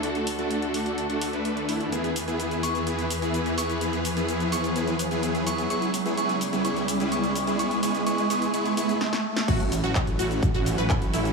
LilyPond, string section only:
\new Staff \with { instrumentName = "String section" } { \time 4/4 \key a \major \tempo 4 = 127 <d, d fis' a'>1 | <e, e gis' b'>1~ | <e, e gis' b'>1 | <cis, cis e'>1~ |
<cis, cis e'>2. r4 | <a cis' fis'>1 | }